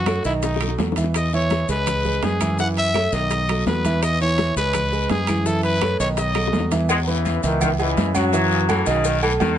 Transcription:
Already playing: F#2 F#4
0.06 A3 A4 C#5, high bongo, high conga, high timbale, low timbale, short guiro, claves, maracas
0.25 B1 D#3 D#4 E4 D#5, high bongo, short guiro, maracas
0.42 D#4, high bongo, high conga, high timbale, long guiro, maracas
0.56 high bongo
0.60 F#3 F#4 A4, high conga, high timbale, claves, maracas
0.68 low bongo
0.78 E2 F#3 F#4 A4, low bongo, high conga, low timbale, short guiro, maracas
0.92 low bongo
0.96 E3 E4 E5, high conga, high timbale, short guiro, maracas
1.04 low bongo
1.14 D#5, high bongo, high timbale, long guiro, claves, maracas
1.33 E3 E4 C#5 E5, high conga, maracas
1.50 high bongo, high conga, high timbale, low timbale, short guiro, maracas
1.68 C#2 G#3 G#4 B4, high bongo, high conga, short guiro, maracas
1.87 high bongo, high conga, low conga, high timbale, long guiro, claves, maracas
2.05 G#3 G#4 B4, high bongo, high conga, low conga, maracas
2.22 F#2 G#4, high bongo, low bongo, high conga, high timbale, low timbale, short guiro, maracas
2.40 E3 E4 E5, high bongo, high conga, high timbale, short guiro, claves, maracas
2.59 E3 E4 E5 F#5, high bongo, high conga, long guiro, maracas
2.77 E5, high conga, high timbale, maracas
2.94 A3 A4 C#5, high bongo, high conga, high timbale, low timbale, short guiro, claves, maracas
3.12 B1 D#3 D#4 D#5, high bongo, short guiro, maracas
3.30 high bongo, high conga, high timbale, long guiro, maracas
3.48 F#3 F#4 A4, high bongo, high conga, high timbale, claves, maracas
3.66 E2 F#3 F#4 A4 B4, high bongo, low bongo, high conga, low timbale, short guiro, maracas
3.85 E3 E4 E5, high bongo, high conga, high timbale, short guiro, maracas
4.03 D#5, high bongo, high timbale, long guiro, claves, maracas
4.21 E3 E4 C#5 E5, high conga, maracas
4.38 high bongo, high conga, high timbale, low timbale, short guiro, maracas
4.56 C#2 G#3 G#4 B4, high bongo, high conga, short guiro, maracas
4.73 high bongo, high conga, low conga, high timbale, long guiro, claves, maracas
4.92 G#3 G#4 B4, high bongo, high conga, maracas
5.09 F#2 G#4, high bongo, low bongo, high conga, high timbale, low timbale, short guiro, maracas
5.27 E3 E4 E5, high bongo, high conga, high timbale, short guiro, claves, maracas
5.46 E3 E4 A4 E5, high bongo, long guiro, maracas
5.63 B4, high conga, high timbale, maracas
5.81 A3 A4 C#5, high bongo, high conga, high timbale, low timbale, short guiro, claves, maracas
6.00 B1 D#3 D#4 C#5 D#5, high bongo, short guiro, maracas
6.17 D#5, high bongo, high conga, high timbale, long guiro, maracas
6.35 F#3 F#4 A4, high bongo, high conga, high timbale, claves, maracas
6.47 high bongo
6.53 E2 F#3 F#4 A4, high conga, low timbale, short guiro, maracas
6.60 low bongo
6.71 E3 E4 E5, low bongo, high conga, high timbale, short guiro, maracas
6.89 E3 G#3, cowbell, high conga, low agogo, long guiro, claves, maracas
7.01 F#3
7.07 C#3 E3 B3 B4 B5, high conga, maracas
7.25 cowbell, high conga, low agogo, short guiro, maracas
7.43 C#2 B2 D#3 E3 E4 E5, cowbell, high conga, short guiro, maracas
7.61 B2 D#3, cowbell, high conga, low conga, low agogo, long guiro, claves, maracas
7.79 C#3 E3 G#3 G#4 G#5, cowbell, high conga, low agogo, maracas
7.97 F#2, cowbell, high conga, low timbale, short guiro, maracas
8.15 C#3 F#3 C#4 C#5 C#6, high conga, low agogo, short guiro, claves, maracas
8.33 E3 E4 E5, cowbell, high conga, low agogo, long guiro, maracas
8.51 C#3, high conga, maracas
8.69 E3 A3 A4 A5, cowbell, high conga, low agogo, short guiro, claves, maracas
8.86 B1 C#3 D#3 D#4 D#5, high conga, low agogo, short guiro, maracas
9.04 D#3, cowbell, high conga, low agogo, long guiro, maracas
9.22 E3 A3 A4 A5, high conga, low agogo, claves, maracas
9.40 E2 D#3, cowbell, high conga, low timbale, low agogo, short guiro, maracas

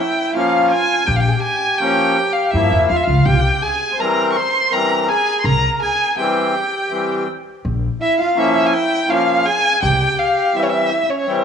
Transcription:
Already playing: E4
0.00 G5
0.34 F3 A#3 C#4 F4 F5
0.71 G#5
1.06 A#1 G4 G5
1.16 F5
1.20 G4 G5
1.28 G#4
1.36 G4
1.43 G#5
1.78 F3 A#3 C#4 G4 G5
2.32 F5
2.51 G2 F3 E4 E5
2.55 A#3 E4
2.71 F2
2.89 E2 F4 F5
2.96 E5
3.03 F4 F5
3.07 C#2
3.25 C2 G4 G5
3.33 F4
3.40 G4
3.62 G#4 G#5
3.93 C5
3.99 E3 G3 C4 A#4 A#5
4.32 C#6
4.36 C5 C6
4.71 E3 G3 C4 A#4 A#5
5.02 A#4 A#5
5.08 G#4 G#5
5.40 A#4 C6
5.44 C2 A#5
5.82 G#4 G#5
6.17 E3 G3 C4 G4 G5
6.90 E3 G3 C4
7.65 A#1
8.01 E4 E5
8.19 F4 F5
8.35 F3 A#3 C#4 E4 E5
8.66 G#5
8.73 G5
9.08 F3 A#3 C#4 F4 F5
9.46 G#4 G#5
9.82 C2 G4 G5
10.19 F5
10.54 E3 G3 C4 E4 E5
10.63 C#5
10.68 E4 E5
11.04 E4
11.09 C#4 C#5
11.26 E3 G3 C4
11.30 C5

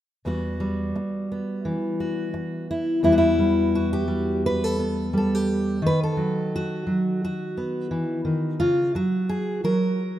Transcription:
0.25 E2 G3 B3 F#4
0.60 G3
0.95 muted steel-string acoustic guitar stroke
1.32 B3
1.65 E3
2.00 F#4
2.34 muted steel-string acoustic guitar stroke
2.71 E4
3.03 E2 G3 B3 E4
3.12 F#4
3.18 E4
3.38 G3
3.75 F#4
3.93 G4
4.08 G3
4.46 B4
4.64 A4
4.79 B3
5.13 G3
5.17 A4
5.35 G4
5.82 D#3
5.86 B4
6.03 A4
6.17 F#3
6.56 F#4
6.87 F#3
7.25 F#4
7.57 B3
7.91 E3
8.25 D#3
8.60 C#3 F4
8.95 F#3 F#4
9.29 G#4
9.64 F#3 A#4

